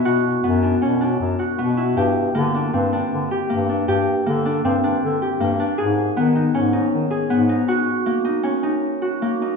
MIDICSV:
0, 0, Header, 1, 3, 480
1, 0, Start_track
1, 0, Tempo, 381922
1, 74, Time_signature, 5, 2, 24, 8
1, 12020, End_track
2, 0, Start_track
2, 0, Title_t, "Harp"
2, 0, Program_c, 0, 46
2, 0, Note_on_c, 0, 59, 63
2, 0, Note_on_c, 0, 62, 55
2, 0, Note_on_c, 0, 64, 55
2, 65, Note_on_c, 0, 66, 72
2, 544, Note_off_c, 0, 59, 0
2, 549, Note_on_c, 0, 59, 66
2, 779, Note_off_c, 0, 62, 0
2, 784, Note_on_c, 0, 62, 50
2, 1026, Note_on_c, 0, 61, 57
2, 1102, Note_off_c, 0, 62, 0
2, 1265, Note_on_c, 0, 62, 51
2, 1340, Note_off_c, 0, 61, 0
2, 1743, Note_off_c, 0, 66, 0
2, 1748, Note_on_c, 0, 66, 49
2, 1985, Note_off_c, 0, 59, 0
2, 1990, Note_on_c, 0, 59, 61
2, 2222, Note_off_c, 0, 64, 0
2, 2227, Note_on_c, 0, 64, 54
2, 2475, Note_on_c, 0, 67, 60
2, 2551, Note_off_c, 0, 66, 0
2, 2949, Note_on_c, 0, 58, 65
2, 3024, Note_off_c, 0, 59, 0
2, 3194, Note_off_c, 0, 62, 0
2, 3199, Note_on_c, 0, 62, 54
2, 3436, Note_on_c, 0, 60, 59
2, 3674, Note_off_c, 0, 62, 0
2, 3679, Note_on_c, 0, 62, 53
2, 4157, Note_off_c, 0, 67, 0
2, 4162, Note_on_c, 0, 67, 51
2, 4387, Note_off_c, 0, 58, 0
2, 4392, Note_on_c, 0, 58, 58
2, 4633, Note_off_c, 0, 62, 0
2, 4638, Note_on_c, 0, 62, 52
2, 4872, Note_off_c, 0, 67, 0
2, 4878, Note_on_c, 0, 67, 74
2, 5353, Note_off_c, 0, 58, 0
2, 5358, Note_on_c, 0, 58, 64
2, 5509, Note_off_c, 0, 64, 0
2, 5593, Note_off_c, 0, 62, 0
2, 5598, Note_on_c, 0, 62, 60
2, 5836, Note_off_c, 0, 60, 0
2, 5841, Note_on_c, 0, 60, 69
2, 6073, Note_off_c, 0, 62, 0
2, 6078, Note_on_c, 0, 62, 58
2, 6553, Note_off_c, 0, 67, 0
2, 6558, Note_on_c, 0, 67, 49
2, 6786, Note_off_c, 0, 58, 0
2, 6791, Note_on_c, 0, 58, 66
2, 7027, Note_off_c, 0, 62, 0
2, 7032, Note_on_c, 0, 62, 60
2, 7264, Note_on_c, 0, 68, 78
2, 7339, Note_off_c, 0, 67, 0
2, 7750, Note_on_c, 0, 59, 68
2, 7825, Note_off_c, 0, 58, 0
2, 7825, Note_off_c, 0, 60, 0
2, 7988, Note_on_c, 0, 63, 52
2, 8063, Note_off_c, 0, 62, 0
2, 8225, Note_on_c, 0, 61, 67
2, 8452, Note_off_c, 0, 63, 0
2, 8457, Note_on_c, 0, 63, 59
2, 8925, Note_off_c, 0, 68, 0
2, 8930, Note_on_c, 0, 68, 54
2, 9169, Note_off_c, 0, 59, 0
2, 9174, Note_on_c, 0, 59, 65
2, 9409, Note_off_c, 0, 63, 0
2, 9414, Note_on_c, 0, 63, 58
2, 9655, Note_on_c, 0, 66, 73
2, 10129, Note_on_c, 0, 58, 60
2, 10205, Note_off_c, 0, 59, 0
2, 10359, Note_off_c, 0, 63, 0
2, 10364, Note_on_c, 0, 63, 51
2, 10594, Note_off_c, 0, 61, 0
2, 10599, Note_on_c, 0, 61, 64
2, 10841, Note_off_c, 0, 63, 0
2, 10846, Note_on_c, 0, 63, 57
2, 11329, Note_off_c, 0, 66, 0
2, 11334, Note_on_c, 0, 66, 52
2, 11581, Note_off_c, 0, 58, 0
2, 11586, Note_on_c, 0, 58, 67
2, 11788, Note_off_c, 0, 68, 0
2, 11831, Note_off_c, 0, 63, 0
2, 11836, Note_on_c, 0, 63, 55
2, 12020, Note_off_c, 0, 58, 0
2, 12020, Note_off_c, 0, 61, 0
2, 12020, Note_off_c, 0, 63, 0
2, 12020, Note_off_c, 0, 66, 0
2, 12020, End_track
3, 0, Start_track
3, 0, Title_t, "Bass clarinet"
3, 0, Program_c, 1, 71
3, 75, Note_on_c, 1, 47, 66
3, 487, Note_off_c, 1, 47, 0
3, 551, Note_on_c, 1, 42, 75
3, 963, Note_off_c, 1, 42, 0
3, 1036, Note_on_c, 1, 47, 64
3, 1446, Note_off_c, 1, 47, 0
3, 1503, Note_on_c, 1, 42, 55
3, 1713, Note_off_c, 1, 42, 0
3, 1992, Note_on_c, 1, 47, 72
3, 2411, Note_off_c, 1, 47, 0
3, 2470, Note_on_c, 1, 43, 67
3, 2889, Note_off_c, 1, 43, 0
3, 2962, Note_on_c, 1, 50, 75
3, 3377, Note_off_c, 1, 50, 0
3, 3439, Note_on_c, 1, 43, 72
3, 3856, Note_off_c, 1, 43, 0
3, 3925, Note_on_c, 1, 50, 63
3, 4132, Note_off_c, 1, 50, 0
3, 4404, Note_on_c, 1, 43, 69
3, 4816, Note_off_c, 1, 43, 0
3, 4879, Note_on_c, 1, 43, 72
3, 5293, Note_off_c, 1, 43, 0
3, 5358, Note_on_c, 1, 50, 70
3, 5773, Note_off_c, 1, 50, 0
3, 5832, Note_on_c, 1, 43, 69
3, 6248, Note_off_c, 1, 43, 0
3, 6315, Note_on_c, 1, 50, 59
3, 6522, Note_off_c, 1, 50, 0
3, 6788, Note_on_c, 1, 43, 74
3, 7203, Note_off_c, 1, 43, 0
3, 7274, Note_on_c, 1, 44, 65
3, 7685, Note_off_c, 1, 44, 0
3, 7755, Note_on_c, 1, 51, 74
3, 8164, Note_off_c, 1, 51, 0
3, 8233, Note_on_c, 1, 44, 68
3, 8641, Note_off_c, 1, 44, 0
3, 8705, Note_on_c, 1, 51, 59
3, 8910, Note_off_c, 1, 51, 0
3, 9181, Note_on_c, 1, 44, 75
3, 9593, Note_off_c, 1, 44, 0
3, 12020, End_track
0, 0, End_of_file